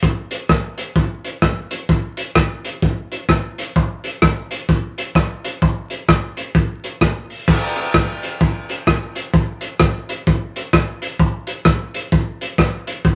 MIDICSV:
0, 0, Header, 1, 2, 480
1, 0, Start_track
1, 0, Tempo, 464756
1, 34, Time_signature, 4, 2, 24, 8
1, 13582, End_track
2, 0, Start_track
2, 0, Title_t, "Drums"
2, 24, Note_on_c, 9, 44, 59
2, 27, Note_on_c, 9, 36, 98
2, 127, Note_off_c, 9, 44, 0
2, 130, Note_off_c, 9, 36, 0
2, 319, Note_on_c, 9, 42, 80
2, 422, Note_off_c, 9, 42, 0
2, 510, Note_on_c, 9, 36, 108
2, 510, Note_on_c, 9, 37, 112
2, 613, Note_off_c, 9, 37, 0
2, 614, Note_off_c, 9, 36, 0
2, 802, Note_on_c, 9, 42, 82
2, 905, Note_off_c, 9, 42, 0
2, 988, Note_on_c, 9, 36, 95
2, 1091, Note_off_c, 9, 36, 0
2, 1285, Note_on_c, 9, 42, 79
2, 1389, Note_off_c, 9, 42, 0
2, 1467, Note_on_c, 9, 36, 96
2, 1467, Note_on_c, 9, 37, 100
2, 1570, Note_off_c, 9, 36, 0
2, 1570, Note_off_c, 9, 37, 0
2, 1764, Note_on_c, 9, 42, 94
2, 1867, Note_off_c, 9, 42, 0
2, 1953, Note_on_c, 9, 36, 105
2, 2056, Note_off_c, 9, 36, 0
2, 2243, Note_on_c, 9, 42, 82
2, 2346, Note_off_c, 9, 42, 0
2, 2432, Note_on_c, 9, 37, 113
2, 2434, Note_on_c, 9, 36, 113
2, 2535, Note_off_c, 9, 37, 0
2, 2537, Note_off_c, 9, 36, 0
2, 2733, Note_on_c, 9, 42, 81
2, 2836, Note_off_c, 9, 42, 0
2, 2916, Note_on_c, 9, 36, 92
2, 3020, Note_off_c, 9, 36, 0
2, 3218, Note_on_c, 9, 42, 84
2, 3321, Note_off_c, 9, 42, 0
2, 3394, Note_on_c, 9, 36, 96
2, 3398, Note_on_c, 9, 37, 97
2, 3497, Note_off_c, 9, 36, 0
2, 3502, Note_off_c, 9, 37, 0
2, 3701, Note_on_c, 9, 42, 92
2, 3804, Note_off_c, 9, 42, 0
2, 3882, Note_on_c, 9, 36, 101
2, 3985, Note_off_c, 9, 36, 0
2, 4171, Note_on_c, 9, 42, 83
2, 4275, Note_off_c, 9, 42, 0
2, 4359, Note_on_c, 9, 37, 121
2, 4362, Note_on_c, 9, 36, 110
2, 4462, Note_off_c, 9, 37, 0
2, 4465, Note_off_c, 9, 36, 0
2, 4655, Note_on_c, 9, 42, 86
2, 4758, Note_off_c, 9, 42, 0
2, 4841, Note_on_c, 9, 36, 100
2, 4945, Note_off_c, 9, 36, 0
2, 5141, Note_on_c, 9, 42, 80
2, 5245, Note_off_c, 9, 42, 0
2, 5321, Note_on_c, 9, 36, 107
2, 5327, Note_on_c, 9, 37, 97
2, 5424, Note_off_c, 9, 36, 0
2, 5431, Note_off_c, 9, 37, 0
2, 5623, Note_on_c, 9, 42, 92
2, 5726, Note_off_c, 9, 42, 0
2, 5804, Note_on_c, 9, 36, 110
2, 5908, Note_off_c, 9, 36, 0
2, 6094, Note_on_c, 9, 42, 81
2, 6198, Note_off_c, 9, 42, 0
2, 6285, Note_on_c, 9, 36, 106
2, 6287, Note_on_c, 9, 37, 119
2, 6388, Note_off_c, 9, 36, 0
2, 6390, Note_off_c, 9, 37, 0
2, 6578, Note_on_c, 9, 42, 89
2, 6681, Note_off_c, 9, 42, 0
2, 6762, Note_on_c, 9, 36, 103
2, 6866, Note_off_c, 9, 36, 0
2, 7062, Note_on_c, 9, 42, 76
2, 7165, Note_off_c, 9, 42, 0
2, 7241, Note_on_c, 9, 36, 93
2, 7245, Note_on_c, 9, 37, 105
2, 7344, Note_off_c, 9, 36, 0
2, 7348, Note_off_c, 9, 37, 0
2, 7539, Note_on_c, 9, 46, 55
2, 7643, Note_off_c, 9, 46, 0
2, 7721, Note_on_c, 9, 49, 95
2, 7724, Note_on_c, 9, 36, 114
2, 7825, Note_off_c, 9, 49, 0
2, 7827, Note_off_c, 9, 36, 0
2, 8014, Note_on_c, 9, 42, 84
2, 8117, Note_off_c, 9, 42, 0
2, 8203, Note_on_c, 9, 37, 125
2, 8204, Note_on_c, 9, 36, 105
2, 8306, Note_off_c, 9, 37, 0
2, 8307, Note_off_c, 9, 36, 0
2, 8501, Note_on_c, 9, 42, 90
2, 8604, Note_off_c, 9, 42, 0
2, 8683, Note_on_c, 9, 36, 103
2, 8787, Note_off_c, 9, 36, 0
2, 8977, Note_on_c, 9, 42, 91
2, 9080, Note_off_c, 9, 42, 0
2, 9161, Note_on_c, 9, 36, 98
2, 9165, Note_on_c, 9, 37, 105
2, 9264, Note_off_c, 9, 36, 0
2, 9268, Note_off_c, 9, 37, 0
2, 9454, Note_on_c, 9, 42, 89
2, 9557, Note_off_c, 9, 42, 0
2, 9642, Note_on_c, 9, 36, 110
2, 9745, Note_off_c, 9, 36, 0
2, 9925, Note_on_c, 9, 42, 78
2, 10028, Note_off_c, 9, 42, 0
2, 10117, Note_on_c, 9, 37, 114
2, 10124, Note_on_c, 9, 36, 115
2, 10220, Note_off_c, 9, 37, 0
2, 10227, Note_off_c, 9, 36, 0
2, 10422, Note_on_c, 9, 42, 84
2, 10525, Note_off_c, 9, 42, 0
2, 10606, Note_on_c, 9, 36, 105
2, 10710, Note_off_c, 9, 36, 0
2, 10905, Note_on_c, 9, 42, 84
2, 11009, Note_off_c, 9, 42, 0
2, 11083, Note_on_c, 9, 36, 106
2, 11086, Note_on_c, 9, 37, 112
2, 11186, Note_off_c, 9, 36, 0
2, 11190, Note_off_c, 9, 37, 0
2, 11380, Note_on_c, 9, 42, 99
2, 11484, Note_off_c, 9, 42, 0
2, 11562, Note_on_c, 9, 36, 112
2, 11665, Note_off_c, 9, 36, 0
2, 11846, Note_on_c, 9, 42, 88
2, 11949, Note_off_c, 9, 42, 0
2, 12033, Note_on_c, 9, 37, 123
2, 12039, Note_on_c, 9, 36, 116
2, 12136, Note_off_c, 9, 37, 0
2, 12142, Note_off_c, 9, 36, 0
2, 12335, Note_on_c, 9, 42, 95
2, 12438, Note_off_c, 9, 42, 0
2, 12518, Note_on_c, 9, 36, 105
2, 12621, Note_off_c, 9, 36, 0
2, 12819, Note_on_c, 9, 42, 86
2, 12922, Note_off_c, 9, 42, 0
2, 12995, Note_on_c, 9, 36, 106
2, 13001, Note_on_c, 9, 37, 106
2, 13098, Note_off_c, 9, 36, 0
2, 13104, Note_off_c, 9, 37, 0
2, 13295, Note_on_c, 9, 42, 98
2, 13398, Note_off_c, 9, 42, 0
2, 13476, Note_on_c, 9, 36, 110
2, 13579, Note_off_c, 9, 36, 0
2, 13582, End_track
0, 0, End_of_file